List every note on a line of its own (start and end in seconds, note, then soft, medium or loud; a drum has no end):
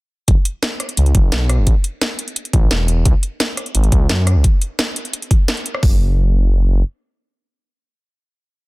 0.28 0.36 F#1 loud
0.28 kick loud
0.28 closed hi-hat loud
0.45 closed hi-hat medium
0.63 snare loud
0.63 closed hi-hat loud
0.80 cross-stick soft
0.80 closed hi-hat medium
0.89 closed hi-hat soft
0.97 1.13 C#2 medium
0.97 closed hi-hat loud
1.06 closed hi-hat soft
1.15 1.30 F#1 loud
1.15 kick loud
1.15 closed hi-hat medium
1.32 1.60 B1 medium
1.32 snare loud
1.32 closed hi-hat loud
1.49 cross-stick medium
1.49 closed hi-hat medium
1.58 1.66 F#1 medium
1.67 1.75 A1 loud
1.67 kick loud
1.67 closed hi-hat medium
1.84 closed hi-hat medium
2.01 snare loud
2.01 closed hi-hat loud
2.19 closed hi-hat medium
2.28 closed hi-hat soft
2.36 closed hi-hat medium
2.45 closed hi-hat soft
2.53 2.69 A1 medium
2.53 kick loud
2.53 closed hi-hat medium
2.71 3.04 E1 loud
2.71 snare loud
2.71 closed hi-hat loud
2.88 closed hi-hat medium
3.05 3.13 C#2 loud
3.05 kick loud
3.05 closed hi-hat medium
3.23 closed hi-hat medium
3.40 snare loud
3.40 closed hi-hat medium
3.57 cross-stick soft
3.57 closed hi-hat medium
3.66 closed hi-hat soft
3.75 3.90 G#1 medium
3.75 closed hi-hat medium
3.84 closed hi-hat soft
3.92 4.08 C#2 loud
3.92 kick loud
3.92 closed hi-hat medium
4.09 4.37 F#2 medium
4.09 snare loud
4.09 closed hi-hat medium
4.27 cross-stick soft
4.27 closed hi-hat medium
4.36 4.43 C#2 loud
4.44 kick loud
4.44 closed hi-hat medium
4.61 closed hi-hat medium
4.79 snare loud
4.79 closed hi-hat medium
4.96 closed hi-hat medium
5.05 closed hi-hat soft
5.13 closed hi-hat medium
5.22 closed hi-hat soft
5.31 kick loud
5.31 closed hi-hat medium
5.48 snare loud
5.48 closed hi-hat medium
5.57 closed hi-hat soft
5.66 closed hi-hat medium
5.74 cross-stick medium
5.83 6.83 F#1 loud
5.83 kick loud
5.83 open hi-hat loud